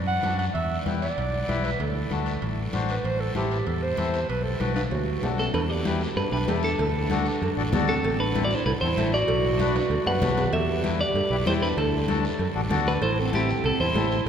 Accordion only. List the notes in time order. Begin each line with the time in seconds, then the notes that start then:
0.24 D4 F#4 A4
0.86 E4 G4 B4
1.48 E4 G4 B4
2.11 D4 F#4 A4
2.73 D4 F#4 C5
3.35 C4 E4 A4
3.98 C4 E4 A4
4.61 D4 F#4 B4
5.24 D4 F#4 A4
5.86 E4 G4 B4
6.32 E4 G4 B4
6.48 E4 G4 A4
7.10 D4 F#4 A4
7.57 D4 F#4 A4
7.73 D4 F#4 A4
8.35 C4 E4 A4
8.82 C4 E4 A4
8.96 C4 E4 A4
9.59 D4 F#4 B4
10.06 D4 F#4 B4
10.22 D4 F#4 B4
10.84 E4 G4 B4
11.31 E4 G4 B4
11.46 E4 G4 D5
12.08 D4 F#4 A4
12.55 D4 F#4 A4
12.70 D4 F#4 A4
13.33 C4 E4 A4
13.80 C4 E4 A4
13.96 C4 E4 A4